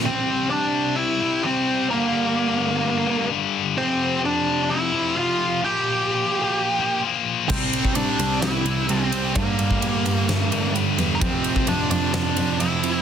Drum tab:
CC |----------------|----------------|----------------|----------------|
RD |----------------|----------------|----------------|----------------|
SD |----------------|----------------|----------------|----------------|
BD |----------------|----------------|----------------|----------------|

CC |x---------------|----------------|----------------|
RD |--x-x-x-x-x-x-x-|x-x-x-x-x-x-x-x-|x-x-x-x-x-x-x-x-|
SD |--------o-------|--------o-------|--------o-------|
BD |o--o------------|o--o------------|o--o------------|